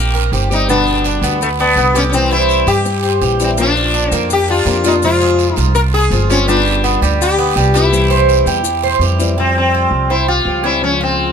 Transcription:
Already playing: upright bass A#1, sitar A#3, cuban tres G4
0.15 cuban tres A#4, maracas
0.32 upright bass G1, steel-string acoustic guitar D#3 G3 C4 G4, cuban tres G4, short guiro, maracas
0.50 steel-string acoustic guitar G3 C4 G4, sitar D#4, short guiro, maracas
0.68 steel-string acoustic guitar B2 D3 G3 B3 G4, cuban tres B3, sitar D4, long guiro, maracas
0.87 maracas
1.04 cuban tres D4, short guiro, maracas
1.22 upright bass D2, cuban tres B3, short guiro, maracas
1.41 sitar A3, muted steel-string acoustic guitar stroke, long guiro, maracas
1.60 sitar B3, cuban tres D4, maracas
1.76 upright bass C2, steel-string acoustic guitar D3 G3 B3 G4, cuban tres B3, short guiro, maracas
1.94 steel-string acoustic guitar D3 G3 B3 G4, sitar C#4, cuban tres G4, short guiro, maracas
2.10 steel-string acoustic guitar C3, sitar C#4, long guiro, maracas
2.14 steel-string acoustic guitar E3 G3 C4 E4, sitar C4
2.31 sitar E4, cuban tres C5, maracas
2.49 short guiro, maracas
2.67 upright bass G2, cuban tres G4, sitar G4, short guiro, maracas
2.85 muted steel-string acoustic guitar stroke, long guiro, maracas
3.03 cuban tres C5, maracas
3.21 upright bass A#1, steel-string acoustic guitar E3 G3 C4 E4, cuban tres G4, short guiro, maracas
3.40 steel-string acoustic guitar E3 G3 C4 E4, short guiro, maracas
3.44 sitar C4
3.58 steel-string acoustic guitar F3 A#3 D4 F4, cuban tres A#3, sitar D4, long guiro, maracas
3.77 maracas
3.94 cuban tres D4, short guiro, maracas
4.11 upright bass F2, cuban tres A#3, sitar C4, short guiro, maracas
4.29 sitar G4, muted steel-string acoustic guitar stroke, long guiro, maracas
4.48 cuban tres D4, sitar F4, maracas
4.65 upright bass F2, steel-string acoustic guitar F3 A#3 D4 F4, cuban tres A#3, short guiro, maracas
4.84 steel-string acoustic guitar A#3 D4 F4, sitar D#4, cuban tres F4, short guiro, maracas
5.02 steel-string acoustic guitar C3 F3 G#3 C4 F4, sitar F4, long guiro, maracas
5.21 cuban tres G#4, maracas
5.39 short guiro, maracas
5.54 upright bass C2, sitar D#4, cuban tres F4, short guiro, maracas
5.75 sitar A#4, muted steel-string acoustic guitar stroke, long guiro, maracas
5.94 sitar G#4, cuban tres G#4, maracas
6.10 upright bass G1, steel-string acoustic guitar F3 G#3 C4 F4, cuban tres F4, short guiro, maracas
6.30 steel-string acoustic guitar F3 G#3 C4 F4, sitar C#4, short guiro, maracas
6.47 steel-string acoustic guitar G3 B3 F4, cuban tres G3, sitar D4, long guiro, maracas
6.67 maracas
6.84 cuban tres B3, short guiro, maracas
7.01 upright bass D2, cuban tres G3, short guiro, maracas
7.21 sitar G4, muted steel-string acoustic guitar stroke, long guiro, maracas
7.38 cuban tres B3, maracas
7.56 upright bass C2, cuban tres G3, steel-string acoustic guitar G3 B3 F4, short guiro, maracas
7.74 steel-string acoustic guitar B3 F4, sitar E4, cuban tres G4, short guiro, maracas
7.91 steel-string acoustic guitar C3 E3 G3 C4 E4, long guiro, maracas
8.10 cuban tres C5, maracas
8.29 short guiro, maracas
8.46 upright bass E2, cuban tres G4, short guiro, maracas
8.63 muted steel-string acoustic guitar stroke, long guiro, maracas
8.83 cuban tres C5, maracas
8.99 upright bass F2, steel-string acoustic guitar E3 G3 C4 E4, cuban tres G4, short guiro, maracas
9.19 steel-string acoustic guitar E3 G3 C4 E4, short guiro, maracas
9.37 steel-string acoustic guitar F3 G3 C4 G4, cuban tres C4, sitar C4
9.58 sitar C4
9.74 cuban tres F4
9.91 upright bass C2
10.10 sitar E4, cuban tres C5, muted steel-string acoustic guitar stroke
10.28 sitar F4, cuban tres G4
10.45 upright bass C#2, steel-string acoustic guitar F3 G3 C4 G4
10.63 steel-string acoustic guitar G3 C4 G4, cuban tres C#4, sitar E4
10.81 steel-string acoustic guitar C#3 F3 G#3 F4, sitar C#4
11.01 sitar C4, cuban tres F4

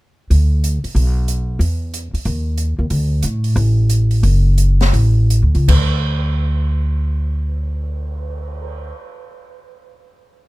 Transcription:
0.30 upright bass D2, open hi-hat
0.64 closed hi-hat
0.84 muted upright bass stroke, open hi-hat
0.95 upright bass B1, open hi-hat
1.28 closed hi-hat
1.59 upright bass E2, open hi-hat
1.94 closed hi-hat
2.13 muted upright bass stroke, open hi-hat
2.25 upright bass D#2, open hi-hat
2.58 closed hi-hat
2.79 upright bass D#2
2.90 upright bass D2, open hi-hat
3.23 upright bass A2, closed hi-hat
3.44 open hi-hat
3.56 upright bass A1, open hi-hat
3.90 closed hi-hat
4.11 open hi-hat
4.23 upright bass F#1, open hi-hat
4.58 closed hi-hat
4.81 snare, open hi-hat
4.93 upright bass A1, open hi-hat
5.30 closed hi-hat
5.42 upright bass D2
5.55 upright bass C#2, open hi-hat
5.68 upright bass D2, kick, crash
5.93 cymbal swell

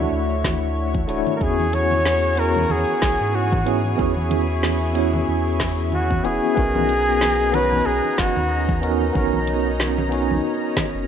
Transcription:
Already playing: analog synth pad D3 E4 F#4 C#5, tine electric piano A3 D4 E4 F#4 C#5 E5
0.12 sub bass D2, cabasa
0.31 cabasa
0.44 kick, snare, closed hi-hat, muted conga, high conga, low conga, cabasa
0.63 cabasa
0.77 cabasa
0.94 kick, high conga
1.08 sub bass D1, tine electric piano A3 D4 E4 F#4 C#5, closed hi-hat, cabasa
1.27 low conga, cabasa
1.36 tine electric piano B3, flugelhorn A#4
1.40 sub bass E2, analog synth pad E3 F#4 G#4, tine electric piano C#4 E4 F#4 G#4, flugelhorn G#4, kick, cabasa
1.60 high conga
1.73 flugelhorn C#5, closed hi-hat, muted conga, cabasa
1.91 low conga, cabasa
2.05 snare, high conga, cabasa
2.36 tine electric piano B3 C#4 E4 F#4, flugelhorn A#4, closed hi-hat, cabasa
2.41 tine electric piano C#5
2.55 high conga, low conga, cabasa
2.70 sub bass E2, flugelhorn G#4, low conga, cabasa
2.87 muted conga
3.02 sub bass B1, kick, snare, closed hi-hat, high conga, cabasa
3.20 sub bass G#2, cabasa
3.35 flugelhorn F#4, cabasa
3.52 kick, high conga, low conga
3.66 tine electric piano B3 C#4 E4 F#4 G#4, closed hi-hat, cabasa
3.85 muted conga, cabasa
3.96 sub bass E2, tine electric piano B3 C#4 E4 F#4, analog synth pad E4, kick, cabasa
4.01 tine electric piano G#4
4.17 high conga, cabasa
4.31 closed hi-hat, muted conga, low conga, cabasa
4.49 cabasa
4.63 snare, high conga, cabasa
4.81 cabasa
4.94 tine electric piano B3 C#4 E4 F#4, closed hi-hat, cabasa
4.98 tine electric piano C#5
5.13 high conga, low conga, cabasa
5.28 sub bass E2, cabasa
5.46 cabasa
5.60 kick, snare, closed hi-hat, muted conga, high conga, cabasa
5.78 cabasa
5.92 flugelhorn F#4, low conga, cabasa
6.11 kick, high conga
6.24 sub bass E1, tine electric piano B3 C#4 E4 F#4 G#4, flugelhorn G#4, closed hi-hat, cabasa
6.43 cabasa
6.55 sub bass B1, tine electric piano B3 C#4 D#4 F#4, analog synth pad B3 D#4 A#5, kick, cabasa
6.60 tine electric piano A#4
6.75 high conga, low conga
6.89 closed hi-hat, muted conga, cabasa
7.08 cabasa
7.21 snare, high conga, cabasa
7.52 tine electric piano B3 C#4 D#4 F#4, flugelhorn B4, closed hi-hat, low conga, cabasa
7.57 tine electric piano C#5
7.72 high conga, low conga, cabasa
7.86 sub bass B1, flugelhorn G#4, cabasa
8.05 muted conga
8.18 sub bass F#1, flugelhorn F#4, kick, snare, closed hi-hat, high conga, cabasa
8.36 sub bass D#2, low conga, cabasa
8.51 cabasa
8.69 kick, high conga
8.81 tine electric piano B3 C#4 D#4 F#4 A#4, closed hi-hat, cabasa
9.01 muted conga, cabasa
9.13 sub bass B1, tine electric piano B3 C#4 D#4 F#4, analog synth pad C#4, kick, low conga, cabasa
9.18 tine electric piano A#4
9.33 high conga, cabasa
9.47 closed hi-hat, muted conga, cabasa
9.66 cabasa
9.80 snare, high conga, cabasa
9.98 low conga, cabasa
10.09 tine electric piano B3 C#4 D#4 F#4, closed hi-hat, cabasa
10.14 tine electric piano C#5
10.30 high conga, low conga, cabasa
10.45 cabasa
10.63 cabasa
10.77 kick, snare, closed hi-hat, muted conga, high conga, low conga, cabasa
10.95 sub bass F#1, cabasa

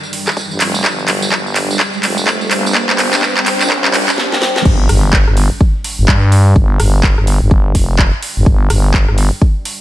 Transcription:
Already playing: analog synth pad G3 D4 D5 G5, riser
0.03 tambourine
0.13 open hi-hat
0.27 kick, cross-stick, clap, tambourine
0.37 kick, tambourine
0.51 fm bass G1, tambourine
0.61 fm bass F1, clap, open hi-hat
0.75 tambourine
0.84 fm bass G1, analog synth pad C5, kick, clap, tambourine
0.99 tambourine
1.08 clap, open hi-hat
1.22 tambourine
1.32 fm bass G1, kick, clap
1.47 tambourine
1.56 clap, open hi-hat
1.71 tambourine
1.79 kick, clap, tambourine
1.93 tambourine
2.03 fm bass F1, clap, open hi-hat
2.18 tambourine
2.27 kick, clap, tambourine
2.41 tambourine
2.51 fm bass G1, clap, open hi-hat
2.66 tambourine
2.75 kick, clap, tambourine
2.89 fm bass G1, clap, tambourine
2.99 clap, open hi-hat
3.13 fm bass G2, clap, tambourine
3.22 kick, clap, tambourine
3.37 clap, tambourine
3.46 clap, open hi-hat
3.61 fm bass A#1, clap, tambourine
3.70 kick, clap, swell
3.85 clap, tambourine
3.94 clap, open hi-hat
4.08 fm bass G1, kick, clap, tambourine
4.18 snare
4.32 snare
4.42 snare
4.56 snare
4.65 fm bass G1, analog synth pad G3 D4 D5 G5, kick, crash, impact
4.89 fm bass G1, cross-stick, open hi-hat
5.13 kick, clap
5.27 fm bass G1, cross-stick
5.37 open hi-hat
5.61 kick
5.84 open hi-hat
5.99 fm bass G1
6.08 fm bass G2, kick, clap
6.32 open hi-hat
6.56 fm bass G1, kick
6.80 fm bass G1, cross-stick, open hi-hat
7.03 kick, clap
7.18 fm bass G1, cross-stick
7.27 open hi-hat
7.42 fm bass G1
7.51 kick
7.75 fm bass F1, kick, open hi-hat
7.99 kick, clap
8.22 open hi-hat
8.37 fm bass G1
8.46 fm bass G1, kick
8.70 fm bass G1, cross-stick, open hi-hat
8.94 kick, clap
9.08 fm bass G1, cross-stick
9.18 open hi-hat
9.42 kick
9.65 open hi-hat

